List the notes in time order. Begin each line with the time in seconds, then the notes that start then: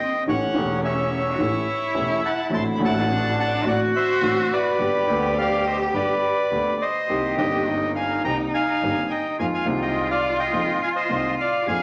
Already playing: C4 D#5 G5
0.25 A1 A2 E3 A3 C#4 G4 C#5
0.30 F#5
0.53 E1 E2 E3 A3 C#4
0.58 G4
0.85 C#5 E5
1.33 F#4
1.38 A1 A2 E3 A3 C#4 E4 G4
1.94 E1 E2 E3 A3 C#4 G4
2.25 F#5 A5
2.49 A1 A2 D3 A3 C4 E4 F#4
2.54 A5 C6
2.75 D3 A3 B5
2.80 A1 A2 C4 F#4
2.85 F#5 A5
3.02 C#4
3.09 D4
3.39 F#5 A5
3.64 A1 A2 D3 A3 C4 F#4 D5
3.68 F#5
3.96 C5 E5
4.21 A1 A2 D3 A3 C4 F#4
4.53 B4 D5
4.78 G1 G2 D3 G3 B3 G4
5.07 D2 D3 G3 B3
5.11 G4
5.38 D5 F5
5.66 C5 D#5
5.93 G1 G2 D3 G3 B3 G4 B4 D5
6.51 D2 D3 G3 B3 G4
6.82 C5 D#5
7.08 C2 C3 D#3 A#3 C4 G4
7.35 G1 G2 D#3 A#3 C4 G4 D#5 G5
7.68 D#4
7.95 F5 G#5
8.24 C2 C3 D#3 A#3 C4 G4 G5 A#5
8.54 F5 G#5
8.82 G1 G2 D#3 A#3 C4 G4
9.10 D#5 G5
9.39 F2 D#3 F3 G#3 C4 F4 F5 G#5
9.54 F5 G#5
9.65 C2 C3 D#3 G#3 C4
9.69 F4
9.82 D#5 G5
10.11 D5 F5
10.39 D#5 G5
10.52 F2 D#3 F3 G#3 C4 F4
10.83 F5 G#5
10.96 C5 D#5
11.09 C2 C3 D#3 G#3 C4 F4
11.40 D5 F5
11.66 F2 D3 F3 G#3 C4 F4 G#4 F5 G#5